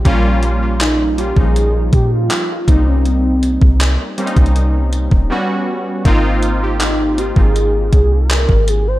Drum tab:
HH |x---x---x---x---x---x---x---x---|x---x---x---xxxxx---x-----------|x---x---x---x---x---x---x---x---|
CP |--------x---------------x-------|--------x-----------------------|--------x---------------x-------|
BD |o-------------o-----o-------o---|------o-------o-------o---------|o-------------o-----o-----o-----|